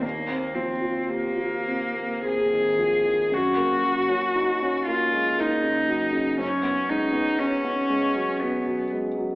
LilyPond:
<<
  \new Staff \with { instrumentName = "Cello" } { \time 3/4 \key f \dorian \tempo 4 = 59 bes8 c'8 bes4 aes'4 | ges'4. f'8 ees'4 | des'8 ees'8 des'4 ces'8 r8 | }
  \new Staff \with { instrumentName = "Grand piano" } { \time 3/4 \key f \dorian ees,16 c'16 f16 f'16 g'16 f'16 c'16 bes16 c'16 ees16 f16 ees16 | ges,16 bes16 ges16 des'16 ees'16 des'16 bes16 aes16 bes16 des16 ges16 des16 | ges,16 ces'16 aes16 ces'16 des'16 ces'16 aes16 ges16 ces'16 ges16 aes16 ges16 | }
>>